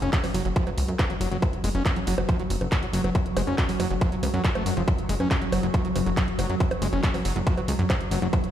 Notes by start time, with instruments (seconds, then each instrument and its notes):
Already playing: synth drone F#3, downlifter
0.02 analog synth bass F#1, acid bass C#4, closed hi-hat
0.13 acid bass F#3, kick, clap, closed hi-hat
0.24 acid bass F#3, open hi-hat, high bongo
0.34 analog synth bass F#1, acid bass F#3, open hi-hat
0.45 analog synth bass F#1, acid bass F#3, closed hi-hat
0.56 acid bass F3, kick, closed hi-hat
0.67 acid bass F#3, closed hi-hat, high bongo
0.78 analog synth bass C#2, open hi-hat
0.88 analog synth bass F#2, closed hi-hat
0.99 acid bass F#3, kick, clap, closed hi-hat, high bongo
1.10 acid bass F#3, closed hi-hat
1.21 analog synth bass F#1, acid bass F#3, open hi-hat
1.32 analog synth bass F#1, acid bass F#3, closed hi-hat
1.42 acid bass F#3, kick, closed hi-hat, high bongo
1.53 closed hi-hat
1.64 analog synth bass F#1, acid bass G#3, open hi-hat
1.75 analog synth bass F#1, acid bass C#4, closed hi-hat
1.86 acid bass F#3, kick, clap, closed hi-hat, high bongo
1.96 acid bass F#3, closed hi-hat
2.07 analog synth bass F#1, acid bass F#3, open hi-hat
2.18 analog synth bass F#1, acid bass F#3, high bongo
2.29 acid bass F3, kick, closed hi-hat
2.39 acid bass F#3, closed hi-hat
2.50 analog synth bass F#1, open hi-hat
2.61 analog synth bass F#1, closed hi-hat, high bongo
2.72 acid bass F#3, kick, clap, closed hi-hat
2.83 acid bass F#3, closed hi-hat
2.93 analog synth bass F#1, acid bass F#3, open hi-hat
3.04 analog synth bass F#1, acid bass F#3, closed hi-hat, high bongo
3.15 acid bass F#3, kick, closed hi-hat
3.26 closed hi-hat
3.37 analog synth bass F#1, acid bass G#3, open hi-hat, high bongo
3.47 analog synth bass F#1, acid bass C#4, closed hi-hat
3.58 acid bass F#3, kick, clap, closed hi-hat
3.69 acid bass F#3, open hi-hat
3.80 analog synth bass F#1, acid bass F#3, open hi-hat, high bongo
3.91 analog synth bass F#1, acid bass F#3, closed hi-hat
4.01 acid bass F3, kick, closed hi-hat
4.12 acid bass F#3, closed hi-hat
4.23 analog synth bass C#2, open hi-hat, high bongo
4.34 analog synth bass F#2, acid bass F#3, closed hi-hat
4.44 acid bass F3, kick, clap, closed hi-hat
4.55 acid bass A3, closed hi-hat, high bongo
4.66 analog synth bass F#1, acid bass F#3, open hi-hat
4.77 analog synth bass F#1, acid bass F3, closed hi-hat
4.88 acid bass F#3, kick, closed hi-hat
4.98 closed hi-hat
5.09 analog synth bass F#1, acid bass G#3, open hi-hat
5.20 analog synth bass F#1, acid bass C#4, closed hi-hat, high bongo
5.31 acid bass F#3, kick, clap, closed hi-hat
5.42 acid bass F#3, closed hi-hat
5.52 analog synth bass F#1, acid bass F#3, open hi-hat, high bongo
5.63 analog synth bass F#1, acid bass F#3, closed hi-hat
5.74 acid bass F3, kick, closed hi-hat
5.85 acid bass F#3, closed hi-hat
5.96 analog synth bass F#1, open hi-hat, high bongo
6.06 analog synth bass F#1, acid bass F#3, closed hi-hat
6.17 acid bass F#3, kick, clap, closed hi-hat
6.28 closed hi-hat
6.39 analog synth bass F#1, acid bass F#3, open hi-hat, high bongo
6.50 analog synth bass F#1, acid bass F#3, closed hi-hat
6.60 acid bass F#3, kick, closed hi-hat
6.71 closed hi-hat, high bongo
6.82 analog synth bass F#1, acid bass G#3, open hi-hat
6.93 analog synth bass F#1, acid bass C#4, closed hi-hat
7.04 acid bass F#3, kick, clap, closed hi-hat
7.14 acid bass F#3, open hi-hat, high bongo
7.25 analog synth bass F#1, acid bass F#3, open hi-hat
7.36 analog synth bass F#1, acid bass F#3, closed hi-hat
7.47 acid bass F3, kick, closed hi-hat
7.57 acid bass F#3, closed hi-hat, high bongo
7.68 analog synth bass C#2, open hi-hat
7.79 analog synth bass F#2, acid bass F#3, closed hi-hat
7.90 acid bass F#3, kick, clap, closed hi-hat, high bongo
8.01 closed hi-hat
8.11 analog synth bass F#1, acid bass F#3, open hi-hat
8.22 analog synth bass F#1, acid bass F#3
8.33 acid bass F#3, kick, closed hi-hat, high bongo
8.44 closed hi-hat